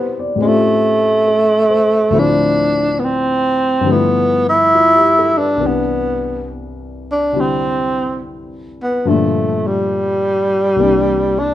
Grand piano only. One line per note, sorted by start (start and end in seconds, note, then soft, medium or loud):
0.00 0.40 B2 soft
0.00 0.38 C3 soft
0.00 0.39 G3 soft
0.00 0.42 D4 soft
0.00 0.43 E4 soft
0.00 0.41 G4 soft
0.00 0.12 B4 soft
0.00 0.23 C5 soft
0.19 0.49 D5 soft
0.36 2.10 A2 soft
0.36 2.11 A3 soft
0.40 2.12 C4 soft
0.40 2.13 C#4 soft
0.45 2.14 F4 soft
0.45 2.16 G4 soft
1.28 1.95 A4 soft
1.70 2.30 C5 soft
2.10 3.84 D2 soft
2.10 3.85 A2 soft
2.10 3.83 F3 soft
2.14 3.86 C4 soft
2.14 3.87 E4 soft
3.81 5.58 G2 soft
3.81 5.59 D3 soft
3.85 5.60 F3 soft
3.85 5.61 A3 soft
3.89 5.62 B3 soft
3.89 5.64 E4 soft
4.74 5.15 F4 soft
4.95 5.33 G4 soft
5.19 5.45 A4 soft
5.39 5.59 B4 soft
5.57 9.04 C2 soft
5.57 7.31 C3 soft
5.57 9.05 E3 soft
5.57 9.06 B4 soft
5.62 9.06 D4 soft
7.32 9.05 C3 soft
7.32 9.05 D3 soft
7.32 9.06 G3 soft
7.32 9.07 E4 soft
9.05 10.77 G2 soft
9.05 10.78 D3 soft
9.05 10.78 F3 soft
9.05 10.79 A3 soft
9.10 10.80 A#2 soft
10.76 11.54 C2 soft
10.76 11.54 C3 soft
10.76 11.54 E3 soft
10.76 11.54 A#3 soft
10.81 11.54 D4 soft